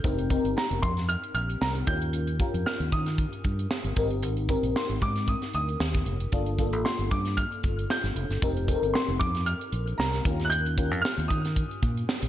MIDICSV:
0, 0, Header, 1, 5, 480
1, 0, Start_track
1, 0, Tempo, 523560
1, 39, Time_signature, 4, 2, 24, 8
1, 11264, End_track
2, 0, Start_track
2, 0, Title_t, "Grand piano"
2, 0, Program_c, 0, 0
2, 520, Note_on_c, 0, 82, 68
2, 756, Note_on_c, 0, 84, 84
2, 767, Note_off_c, 0, 82, 0
2, 981, Note_off_c, 0, 84, 0
2, 996, Note_on_c, 0, 89, 87
2, 1220, Note_off_c, 0, 89, 0
2, 1234, Note_on_c, 0, 89, 80
2, 1478, Note_on_c, 0, 82, 76
2, 1484, Note_off_c, 0, 89, 0
2, 1532, Note_off_c, 0, 82, 0
2, 1716, Note_on_c, 0, 91, 81
2, 2401, Note_off_c, 0, 91, 0
2, 2441, Note_on_c, 0, 89, 78
2, 2681, Note_on_c, 0, 87, 81
2, 2687, Note_off_c, 0, 89, 0
2, 3604, Note_off_c, 0, 87, 0
2, 4363, Note_on_c, 0, 84, 67
2, 4605, Note_on_c, 0, 86, 92
2, 4609, Note_off_c, 0, 84, 0
2, 4845, Note_on_c, 0, 87, 81
2, 4850, Note_off_c, 0, 86, 0
2, 5071, Note_off_c, 0, 87, 0
2, 5085, Note_on_c, 0, 87, 94
2, 5529, Note_off_c, 0, 87, 0
2, 6279, Note_on_c, 0, 84, 67
2, 6520, Note_on_c, 0, 86, 76
2, 6527, Note_off_c, 0, 84, 0
2, 6757, Note_on_c, 0, 89, 81
2, 6768, Note_off_c, 0, 86, 0
2, 7250, Note_on_c, 0, 91, 73
2, 7254, Note_off_c, 0, 89, 0
2, 7590, Note_off_c, 0, 91, 0
2, 8192, Note_on_c, 0, 84, 74
2, 8430, Note_on_c, 0, 86, 84
2, 8444, Note_off_c, 0, 84, 0
2, 8675, Note_on_c, 0, 89, 77
2, 8683, Note_off_c, 0, 86, 0
2, 9125, Note_off_c, 0, 89, 0
2, 9147, Note_on_c, 0, 82, 76
2, 9578, Note_on_c, 0, 90, 73
2, 9587, Note_off_c, 0, 82, 0
2, 9624, Note_on_c, 0, 91, 96
2, 9639, Note_off_c, 0, 90, 0
2, 10099, Note_on_c, 0, 89, 93
2, 10127, Note_off_c, 0, 91, 0
2, 10333, Note_off_c, 0, 89, 0
2, 10343, Note_on_c, 0, 87, 85
2, 11264, Note_off_c, 0, 87, 0
2, 11264, End_track
3, 0, Start_track
3, 0, Title_t, "FM electric piano"
3, 0, Program_c, 1, 5
3, 0, Control_c, 1, 64, 127
3, 37, Note_on_c, 1, 60, 76
3, 38, Note_on_c, 1, 63, 70
3, 47, Note_on_c, 1, 67, 70
3, 47, Note_on_c, 1, 70, 87
3, 52, Control_c, 1, 64, 0
3, 214, Control_c, 1, 64, 127
3, 234, Note_off_c, 1, 60, 0
3, 235, Note_off_c, 1, 63, 0
3, 239, Note_off_c, 1, 67, 0
3, 239, Note_off_c, 1, 70, 0
3, 273, Note_on_c, 1, 60, 80
3, 276, Note_on_c, 1, 63, 70
3, 279, Note_on_c, 1, 67, 73
3, 282, Note_on_c, 1, 70, 92
3, 1050, Note_off_c, 1, 60, 0
3, 1051, Note_off_c, 1, 63, 0
3, 1053, Note_off_c, 1, 67, 0
3, 1055, Note_off_c, 1, 70, 0
3, 1711, Note_on_c, 1, 61, 65
3, 1720, Note_on_c, 1, 65, 61
3, 1722, Note_on_c, 1, 67, 66
3, 1725, Note_on_c, 1, 70, 67
3, 1730, Control_c, 1, 64, 0
3, 1900, Control_c, 1, 64, 127
3, 2108, Note_off_c, 1, 61, 0
3, 2112, Note_off_c, 1, 65, 0
3, 2113, Note_off_c, 1, 67, 0
3, 2115, Note_off_c, 1, 70, 0
3, 2196, Note_on_c, 1, 61, 63
3, 2201, Note_on_c, 1, 65, 65
3, 2205, Note_on_c, 1, 67, 64
3, 2207, Note_on_c, 1, 70, 77
3, 2972, Note_off_c, 1, 61, 0
3, 2974, Note_off_c, 1, 65, 0
3, 2976, Note_off_c, 1, 67, 0
3, 2977, Note_off_c, 1, 70, 0
3, 3636, Note_on_c, 1, 60, 82
3, 3639, Note_on_c, 1, 63, 63
3, 3641, Note_on_c, 1, 67, 72
3, 3647, Note_on_c, 1, 70, 85
3, 3652, Control_c, 1, 64, 0
3, 3792, Control_c, 1, 64, 127
3, 4031, Note_off_c, 1, 60, 0
3, 4032, Note_off_c, 1, 63, 0
3, 4033, Note_off_c, 1, 67, 0
3, 4036, Note_off_c, 1, 70, 0
3, 4114, Note_on_c, 1, 60, 81
3, 4119, Note_on_c, 1, 63, 68
3, 4123, Note_on_c, 1, 67, 72
3, 4123, Note_on_c, 1, 70, 91
3, 4891, Note_off_c, 1, 60, 0
3, 4894, Note_off_c, 1, 63, 0
3, 4896, Note_off_c, 1, 67, 0
3, 4896, Note_off_c, 1, 70, 0
3, 5798, Note_on_c, 1, 58, 73
3, 5802, Note_on_c, 1, 62, 72
3, 5802, Note_on_c, 1, 65, 70
3, 5808, Note_on_c, 1, 69, 87
3, 5814, Control_c, 1, 64, 0
3, 5954, Control_c, 1, 64, 127
3, 5996, Note_off_c, 1, 58, 0
3, 5998, Note_off_c, 1, 62, 0
3, 5998, Note_off_c, 1, 65, 0
3, 6001, Note_off_c, 1, 69, 0
3, 6036, Note_on_c, 1, 58, 78
3, 6038, Note_on_c, 1, 62, 72
3, 6044, Note_on_c, 1, 65, 70
3, 6046, Note_on_c, 1, 69, 85
3, 6813, Note_off_c, 1, 58, 0
3, 6814, Note_off_c, 1, 62, 0
3, 6817, Note_off_c, 1, 65, 0
3, 6817, Note_off_c, 1, 69, 0
3, 7723, Note_on_c, 1, 60, 80
3, 7726, Note_on_c, 1, 63, 74
3, 7728, Note_on_c, 1, 67, 72
3, 7732, Control_c, 1, 64, 0
3, 7733, Note_on_c, 1, 70, 86
3, 7894, Control_c, 1, 64, 127
3, 7918, Note_off_c, 1, 60, 0
3, 7920, Note_off_c, 1, 63, 0
3, 7921, Note_off_c, 1, 67, 0
3, 7923, Note_off_c, 1, 70, 0
3, 7957, Note_on_c, 1, 60, 78
3, 7958, Note_on_c, 1, 63, 74
3, 7962, Note_on_c, 1, 67, 65
3, 7964, Note_on_c, 1, 69, 70
3, 8023, Note_on_c, 1, 70, 87
3, 8025, Note_off_c, 1, 69, 0
3, 8733, Note_off_c, 1, 60, 0
3, 8733, Note_off_c, 1, 63, 0
3, 8736, Note_off_c, 1, 67, 0
3, 8766, Note_off_c, 1, 70, 0
3, 9401, Note_on_c, 1, 61, 72
3, 9404, Note_on_c, 1, 65, 59
3, 9406, Note_on_c, 1, 67, 55
3, 9413, Control_c, 1, 64, 0
3, 9414, Note_on_c, 1, 70, 68
3, 9557, Control_c, 1, 64, 127
3, 9794, Note_off_c, 1, 61, 0
3, 9795, Note_off_c, 1, 65, 0
3, 9796, Note_off_c, 1, 67, 0
3, 9800, Note_off_c, 1, 70, 0
3, 9880, Note_on_c, 1, 61, 71
3, 9884, Note_on_c, 1, 65, 59
3, 9888, Note_on_c, 1, 67, 69
3, 9891, Note_on_c, 1, 70, 69
3, 10654, Note_off_c, 1, 61, 0
3, 10656, Note_off_c, 1, 65, 0
3, 10658, Note_off_c, 1, 67, 0
3, 10660, Note_off_c, 1, 70, 0
3, 11264, End_track
4, 0, Start_track
4, 0, Title_t, "Fingered electric bass"
4, 0, Program_c, 2, 33
4, 38, Note_on_c, 2, 29, 89
4, 332, Note_off_c, 2, 29, 0
4, 405, Note_on_c, 2, 31, 73
4, 494, Note_off_c, 2, 31, 0
4, 647, Note_on_c, 2, 29, 88
4, 735, Note_off_c, 2, 29, 0
4, 759, Note_on_c, 2, 41, 101
4, 1052, Note_off_c, 2, 41, 0
4, 1231, Note_on_c, 2, 34, 71
4, 1425, Note_off_c, 2, 34, 0
4, 1478, Note_on_c, 2, 36, 73
4, 1669, Note_off_c, 2, 36, 0
4, 1716, Note_on_c, 2, 39, 88
4, 2201, Note_off_c, 2, 39, 0
4, 2329, Note_on_c, 2, 41, 70
4, 2417, Note_off_c, 2, 41, 0
4, 2567, Note_on_c, 2, 39, 89
4, 2656, Note_off_c, 2, 39, 0
4, 2680, Note_on_c, 2, 51, 89
4, 2973, Note_off_c, 2, 51, 0
4, 3160, Note_on_c, 2, 43, 68
4, 3350, Note_off_c, 2, 43, 0
4, 3524, Note_on_c, 2, 31, 84
4, 3614, Note_off_c, 2, 31, 0
4, 3634, Note_on_c, 2, 32, 93
4, 3762, Note_off_c, 2, 32, 0
4, 3762, Note_on_c, 2, 31, 76
4, 3873, Note_off_c, 2, 31, 0
4, 3873, Note_on_c, 2, 32, 85
4, 4170, Note_off_c, 2, 32, 0
4, 4242, Note_on_c, 2, 34, 73
4, 4333, Note_off_c, 2, 34, 0
4, 4486, Note_on_c, 2, 32, 72
4, 4575, Note_off_c, 2, 32, 0
4, 4600, Note_on_c, 2, 44, 98
4, 4894, Note_off_c, 2, 44, 0
4, 5080, Note_on_c, 2, 38, 66
4, 5271, Note_off_c, 2, 38, 0
4, 5316, Note_on_c, 2, 39, 73
4, 5509, Note_off_c, 2, 39, 0
4, 5556, Note_on_c, 2, 29, 75
4, 5749, Note_off_c, 2, 29, 0
4, 5799, Note_on_c, 2, 31, 72
4, 6168, Note_off_c, 2, 31, 0
4, 6168, Note_on_c, 2, 33, 67
4, 6257, Note_off_c, 2, 33, 0
4, 6406, Note_on_c, 2, 31, 76
4, 6496, Note_off_c, 2, 31, 0
4, 6522, Note_on_c, 2, 43, 98
4, 6815, Note_off_c, 2, 43, 0
4, 7004, Note_on_c, 2, 31, 75
4, 7193, Note_off_c, 2, 31, 0
4, 7367, Note_on_c, 2, 31, 89
4, 7456, Note_off_c, 2, 31, 0
4, 7474, Note_on_c, 2, 29, 86
4, 7580, Note_off_c, 2, 29, 0
4, 7604, Note_on_c, 2, 31, 68
4, 7694, Note_off_c, 2, 31, 0
4, 7719, Note_on_c, 2, 29, 86
4, 8014, Note_off_c, 2, 29, 0
4, 8087, Note_on_c, 2, 31, 67
4, 8176, Note_off_c, 2, 31, 0
4, 8325, Note_on_c, 2, 29, 79
4, 8415, Note_off_c, 2, 29, 0
4, 8439, Note_on_c, 2, 41, 93
4, 8734, Note_off_c, 2, 41, 0
4, 8915, Note_on_c, 2, 34, 78
4, 9108, Note_off_c, 2, 34, 0
4, 9156, Note_on_c, 2, 36, 75
4, 9349, Note_off_c, 2, 36, 0
4, 9398, Note_on_c, 2, 39, 88
4, 10005, Note_off_c, 2, 39, 0
4, 10005, Note_on_c, 2, 41, 70
4, 10095, Note_off_c, 2, 41, 0
4, 10246, Note_on_c, 2, 39, 87
4, 10336, Note_off_c, 2, 39, 0
4, 10361, Note_on_c, 2, 51, 79
4, 10655, Note_off_c, 2, 51, 0
4, 10841, Note_on_c, 2, 46, 85
4, 11031, Note_off_c, 2, 46, 0
4, 11207, Note_on_c, 2, 34, 83
4, 11264, Note_off_c, 2, 34, 0
4, 11264, End_track
5, 0, Start_track
5, 0, Title_t, "Drums"
5, 37, Note_on_c, 9, 42, 76
5, 39, Note_on_c, 9, 36, 90
5, 129, Note_off_c, 9, 42, 0
5, 130, Note_off_c, 9, 36, 0
5, 170, Note_on_c, 9, 42, 40
5, 262, Note_off_c, 9, 42, 0
5, 279, Note_on_c, 9, 36, 81
5, 283, Note_on_c, 9, 42, 66
5, 370, Note_off_c, 9, 36, 0
5, 375, Note_off_c, 9, 42, 0
5, 413, Note_on_c, 9, 42, 44
5, 505, Note_off_c, 9, 42, 0
5, 529, Note_on_c, 9, 38, 96
5, 621, Note_off_c, 9, 38, 0
5, 653, Note_on_c, 9, 42, 41
5, 745, Note_off_c, 9, 42, 0
5, 761, Note_on_c, 9, 36, 82
5, 762, Note_on_c, 9, 42, 66
5, 853, Note_off_c, 9, 36, 0
5, 854, Note_off_c, 9, 42, 0
5, 889, Note_on_c, 9, 42, 46
5, 896, Note_on_c, 9, 38, 27
5, 981, Note_off_c, 9, 42, 0
5, 988, Note_off_c, 9, 38, 0
5, 1001, Note_on_c, 9, 42, 78
5, 1093, Note_off_c, 9, 42, 0
5, 1132, Note_on_c, 9, 42, 38
5, 1224, Note_off_c, 9, 42, 0
5, 1234, Note_on_c, 9, 42, 59
5, 1326, Note_off_c, 9, 42, 0
5, 1372, Note_on_c, 9, 42, 41
5, 1463, Note_off_c, 9, 42, 0
5, 1482, Note_on_c, 9, 38, 99
5, 1573, Note_off_c, 9, 38, 0
5, 1603, Note_on_c, 9, 42, 50
5, 1695, Note_off_c, 9, 42, 0
5, 1713, Note_on_c, 9, 42, 63
5, 1718, Note_on_c, 9, 36, 95
5, 1805, Note_off_c, 9, 42, 0
5, 1809, Note_off_c, 9, 36, 0
5, 1849, Note_on_c, 9, 42, 44
5, 1940, Note_off_c, 9, 42, 0
5, 1954, Note_on_c, 9, 42, 77
5, 2046, Note_off_c, 9, 42, 0
5, 2085, Note_on_c, 9, 42, 45
5, 2176, Note_off_c, 9, 42, 0
5, 2197, Note_on_c, 9, 36, 82
5, 2197, Note_on_c, 9, 42, 66
5, 2289, Note_off_c, 9, 36, 0
5, 2289, Note_off_c, 9, 42, 0
5, 2332, Note_on_c, 9, 42, 44
5, 2424, Note_off_c, 9, 42, 0
5, 2444, Note_on_c, 9, 38, 99
5, 2536, Note_off_c, 9, 38, 0
5, 2574, Note_on_c, 9, 42, 38
5, 2665, Note_off_c, 9, 42, 0
5, 2679, Note_on_c, 9, 42, 67
5, 2680, Note_on_c, 9, 36, 82
5, 2770, Note_off_c, 9, 42, 0
5, 2772, Note_off_c, 9, 36, 0
5, 2807, Note_on_c, 9, 42, 52
5, 2814, Note_on_c, 9, 38, 30
5, 2898, Note_off_c, 9, 42, 0
5, 2905, Note_off_c, 9, 38, 0
5, 2917, Note_on_c, 9, 42, 71
5, 2918, Note_on_c, 9, 36, 75
5, 3009, Note_off_c, 9, 36, 0
5, 3009, Note_off_c, 9, 42, 0
5, 3050, Note_on_c, 9, 42, 36
5, 3142, Note_off_c, 9, 42, 0
5, 3156, Note_on_c, 9, 42, 65
5, 3159, Note_on_c, 9, 36, 77
5, 3247, Note_off_c, 9, 42, 0
5, 3251, Note_off_c, 9, 36, 0
5, 3292, Note_on_c, 9, 42, 41
5, 3384, Note_off_c, 9, 42, 0
5, 3398, Note_on_c, 9, 38, 103
5, 3490, Note_off_c, 9, 38, 0
5, 3523, Note_on_c, 9, 42, 49
5, 3615, Note_off_c, 9, 42, 0
5, 3632, Note_on_c, 9, 42, 62
5, 3637, Note_on_c, 9, 36, 96
5, 3724, Note_off_c, 9, 42, 0
5, 3729, Note_off_c, 9, 36, 0
5, 3764, Note_on_c, 9, 42, 43
5, 3856, Note_off_c, 9, 42, 0
5, 3874, Note_on_c, 9, 42, 75
5, 3965, Note_off_c, 9, 42, 0
5, 4004, Note_on_c, 9, 42, 37
5, 4096, Note_off_c, 9, 42, 0
5, 4114, Note_on_c, 9, 42, 60
5, 4116, Note_on_c, 9, 36, 79
5, 4206, Note_off_c, 9, 42, 0
5, 4207, Note_off_c, 9, 36, 0
5, 4249, Note_on_c, 9, 42, 48
5, 4340, Note_off_c, 9, 42, 0
5, 4365, Note_on_c, 9, 38, 103
5, 4456, Note_off_c, 9, 38, 0
5, 4489, Note_on_c, 9, 42, 38
5, 4581, Note_off_c, 9, 42, 0
5, 4601, Note_on_c, 9, 36, 74
5, 4601, Note_on_c, 9, 42, 70
5, 4692, Note_off_c, 9, 36, 0
5, 4692, Note_off_c, 9, 42, 0
5, 4727, Note_on_c, 9, 42, 51
5, 4734, Note_on_c, 9, 38, 26
5, 4819, Note_off_c, 9, 42, 0
5, 4826, Note_off_c, 9, 38, 0
5, 4837, Note_on_c, 9, 42, 74
5, 4838, Note_on_c, 9, 36, 75
5, 4929, Note_off_c, 9, 42, 0
5, 4930, Note_off_c, 9, 36, 0
5, 4970, Note_on_c, 9, 42, 40
5, 4975, Note_on_c, 9, 38, 35
5, 5061, Note_off_c, 9, 42, 0
5, 5066, Note_off_c, 9, 38, 0
5, 5074, Note_on_c, 9, 42, 55
5, 5166, Note_off_c, 9, 42, 0
5, 5213, Note_on_c, 9, 42, 37
5, 5304, Note_off_c, 9, 42, 0
5, 5321, Note_on_c, 9, 38, 100
5, 5413, Note_off_c, 9, 38, 0
5, 5445, Note_on_c, 9, 42, 49
5, 5450, Note_on_c, 9, 38, 27
5, 5451, Note_on_c, 9, 36, 86
5, 5536, Note_off_c, 9, 42, 0
5, 5541, Note_off_c, 9, 38, 0
5, 5543, Note_off_c, 9, 36, 0
5, 5556, Note_on_c, 9, 42, 68
5, 5648, Note_off_c, 9, 42, 0
5, 5686, Note_on_c, 9, 42, 43
5, 5778, Note_off_c, 9, 42, 0
5, 5796, Note_on_c, 9, 42, 75
5, 5800, Note_on_c, 9, 36, 89
5, 5888, Note_off_c, 9, 42, 0
5, 5892, Note_off_c, 9, 36, 0
5, 5926, Note_on_c, 9, 42, 39
5, 6018, Note_off_c, 9, 42, 0
5, 6038, Note_on_c, 9, 36, 72
5, 6038, Note_on_c, 9, 42, 66
5, 6130, Note_off_c, 9, 36, 0
5, 6130, Note_off_c, 9, 42, 0
5, 6169, Note_on_c, 9, 42, 46
5, 6260, Note_off_c, 9, 42, 0
5, 6286, Note_on_c, 9, 38, 96
5, 6378, Note_off_c, 9, 38, 0
5, 6412, Note_on_c, 9, 42, 39
5, 6504, Note_off_c, 9, 42, 0
5, 6519, Note_on_c, 9, 42, 66
5, 6522, Note_on_c, 9, 36, 83
5, 6610, Note_off_c, 9, 42, 0
5, 6614, Note_off_c, 9, 36, 0
5, 6648, Note_on_c, 9, 42, 52
5, 6655, Note_on_c, 9, 38, 32
5, 6739, Note_off_c, 9, 42, 0
5, 6746, Note_off_c, 9, 38, 0
5, 6762, Note_on_c, 9, 36, 76
5, 6762, Note_on_c, 9, 42, 75
5, 6853, Note_off_c, 9, 36, 0
5, 6854, Note_off_c, 9, 42, 0
5, 6896, Note_on_c, 9, 42, 40
5, 6987, Note_off_c, 9, 42, 0
5, 6999, Note_on_c, 9, 42, 66
5, 7004, Note_on_c, 9, 36, 85
5, 7091, Note_off_c, 9, 42, 0
5, 7095, Note_off_c, 9, 36, 0
5, 7139, Note_on_c, 9, 42, 41
5, 7231, Note_off_c, 9, 42, 0
5, 7245, Note_on_c, 9, 38, 100
5, 7337, Note_off_c, 9, 38, 0
5, 7371, Note_on_c, 9, 42, 45
5, 7376, Note_on_c, 9, 38, 28
5, 7463, Note_off_c, 9, 42, 0
5, 7468, Note_off_c, 9, 38, 0
5, 7481, Note_on_c, 9, 42, 62
5, 7573, Note_off_c, 9, 42, 0
5, 7614, Note_on_c, 9, 42, 40
5, 7617, Note_on_c, 9, 38, 28
5, 7705, Note_off_c, 9, 42, 0
5, 7709, Note_off_c, 9, 38, 0
5, 7722, Note_on_c, 9, 36, 108
5, 7722, Note_on_c, 9, 42, 78
5, 7814, Note_off_c, 9, 36, 0
5, 7814, Note_off_c, 9, 42, 0
5, 7854, Note_on_c, 9, 42, 41
5, 7946, Note_off_c, 9, 42, 0
5, 7960, Note_on_c, 9, 36, 73
5, 7962, Note_on_c, 9, 42, 70
5, 8052, Note_off_c, 9, 36, 0
5, 8053, Note_off_c, 9, 42, 0
5, 8096, Note_on_c, 9, 42, 43
5, 8188, Note_off_c, 9, 42, 0
5, 8209, Note_on_c, 9, 38, 108
5, 8300, Note_off_c, 9, 38, 0
5, 8332, Note_on_c, 9, 42, 38
5, 8424, Note_off_c, 9, 42, 0
5, 8442, Note_on_c, 9, 36, 83
5, 8443, Note_on_c, 9, 42, 75
5, 8534, Note_off_c, 9, 36, 0
5, 8535, Note_off_c, 9, 42, 0
5, 8569, Note_on_c, 9, 42, 48
5, 8576, Note_on_c, 9, 38, 30
5, 8661, Note_off_c, 9, 42, 0
5, 8668, Note_off_c, 9, 38, 0
5, 8677, Note_on_c, 9, 42, 72
5, 8768, Note_off_c, 9, 42, 0
5, 8812, Note_on_c, 9, 42, 43
5, 8904, Note_off_c, 9, 42, 0
5, 8915, Note_on_c, 9, 42, 62
5, 9007, Note_off_c, 9, 42, 0
5, 9053, Note_on_c, 9, 42, 40
5, 9145, Note_off_c, 9, 42, 0
5, 9166, Note_on_c, 9, 38, 108
5, 9257, Note_off_c, 9, 38, 0
5, 9291, Note_on_c, 9, 42, 50
5, 9296, Note_on_c, 9, 38, 31
5, 9382, Note_off_c, 9, 42, 0
5, 9387, Note_off_c, 9, 38, 0
5, 9400, Note_on_c, 9, 36, 96
5, 9400, Note_on_c, 9, 42, 70
5, 9492, Note_off_c, 9, 36, 0
5, 9492, Note_off_c, 9, 42, 0
5, 9532, Note_on_c, 9, 42, 45
5, 9536, Note_on_c, 9, 38, 30
5, 9624, Note_off_c, 9, 42, 0
5, 9627, Note_off_c, 9, 38, 0
5, 9643, Note_on_c, 9, 42, 79
5, 9735, Note_off_c, 9, 42, 0
5, 9775, Note_on_c, 9, 42, 41
5, 9867, Note_off_c, 9, 42, 0
5, 9880, Note_on_c, 9, 36, 81
5, 9885, Note_on_c, 9, 42, 74
5, 9972, Note_off_c, 9, 36, 0
5, 9977, Note_off_c, 9, 42, 0
5, 10018, Note_on_c, 9, 42, 47
5, 10110, Note_off_c, 9, 42, 0
5, 10132, Note_on_c, 9, 38, 106
5, 10223, Note_off_c, 9, 38, 0
5, 10259, Note_on_c, 9, 42, 40
5, 10351, Note_off_c, 9, 42, 0
5, 10364, Note_on_c, 9, 36, 78
5, 10367, Note_on_c, 9, 42, 69
5, 10456, Note_off_c, 9, 36, 0
5, 10459, Note_off_c, 9, 42, 0
5, 10495, Note_on_c, 9, 42, 55
5, 10502, Note_on_c, 9, 38, 31
5, 10587, Note_off_c, 9, 42, 0
5, 10594, Note_off_c, 9, 38, 0
5, 10602, Note_on_c, 9, 36, 72
5, 10604, Note_on_c, 9, 42, 71
5, 10693, Note_off_c, 9, 36, 0
5, 10696, Note_off_c, 9, 42, 0
5, 10737, Note_on_c, 9, 42, 38
5, 10829, Note_off_c, 9, 42, 0
5, 10842, Note_on_c, 9, 42, 56
5, 10843, Note_on_c, 9, 36, 81
5, 10934, Note_off_c, 9, 36, 0
5, 10934, Note_off_c, 9, 42, 0
5, 10977, Note_on_c, 9, 42, 45
5, 11069, Note_off_c, 9, 42, 0
5, 11083, Note_on_c, 9, 38, 110
5, 11175, Note_off_c, 9, 38, 0
5, 11209, Note_on_c, 9, 42, 54
5, 11264, Note_off_c, 9, 42, 0
5, 11264, End_track
0, 0, End_of_file